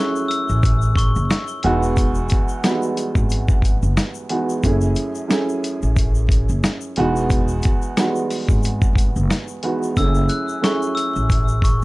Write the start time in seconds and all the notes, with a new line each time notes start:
Already playing: F#2 A3 C#4 E4 G#4 C#6
0.16 shaker
0.28 E6, closed hi-hat, shaker
0.49 A1, shaker
0.63 kick, closed hi-hat, shaker
0.82 shaker
0.96 C#6, kick, closed hi-hat, shaker
1.16 F#1, shaker
1.30 cross-stick, snare, closed hi-hat, shaker
1.48 shaker
1.63 E1 E2 G#3 B3 D#4 F#4, closed hi-hat
1.83 shaker
1.97 kick, closed hi-hat, shaker
2.15 shaker
2.29 kick, closed hi-hat, shaker
2.48 shaker
2.64 E2 G3 B3 D#4 F#4, cross-stick, snare, closed hi-hat, shaker
2.71 G#3
2.82 shaker
2.97 closed hi-hat, shaker
3.15 G#1, kick, shaker
3.30 closed hi-hat, shaker
3.48 kick, shaker
3.62 kick, closed hi-hat, shaker
3.82 F#1, shaker
3.97 cross-stick, snare, closed hi-hat, shaker
4.14 shaker
4.29 E2 G#3 B3 D#4 F#4, closed hi-hat
4.49 shaker
4.63 F#1 F#2 A3 C#4 E4 G#4, kick, closed hi-hat, shaker
4.81 shaker
4.95 closed hi-hat, shaker
5.15 shaker
5.28 F#2 A3 C#4 E4 G#4, cross-stick, snare, closed hi-hat, shaker
5.49 shaker
5.64 closed hi-hat, shaker
5.82 A1, shaker
5.96 kick, closed hi-hat, shaker
6.15 shaker
6.29 kick, closed hi-hat, shaker
6.49 F#1, shaker
6.64 cross-stick, snare, closed hi-hat, shaker
6.81 shaker
6.96 E1 E2 G#3 B3 D#4 F#4, closed hi-hat
7.16 shaker
7.30 kick, closed hi-hat, shaker
7.48 shaker
7.62 kick, closed hi-hat, shaker
7.82 shaker
7.97 E2 G3 B3 D#4 F#4, cross-stick, snare, closed hi-hat, shaker
8.04 G#3
8.16 shaker
8.31 open hi-hat, shaker
8.49 G#1, kick, shaker
8.63 closed hi-hat, shaker
8.82 kick, shaker
8.95 kick, closed hi-hat, shaker
9.16 F#1, shaker
9.30 cross-stick, snare, closed hi-hat, shaker
9.48 shaker
9.63 E2 G#3 B3 D#4 F#4, closed hi-hat
9.83 shaker
9.97 F#1 F#2 A3 C#4 E4 G#4 E6, kick, closed hi-hat, shaker
10.15 shaker
10.29 F#6, closed hi-hat, shaker
10.49 shaker
10.61 F#2 A3 C#4 E4 G#4 C#6, cross-stick, snare, closed hi-hat, shaker
10.82 shaker
10.95 E6, closed hi-hat, shaker
11.15 A1, shaker
11.30 kick, closed hi-hat, shaker
11.48 shaker
11.62 C#6, kick, closed hi-hat, shaker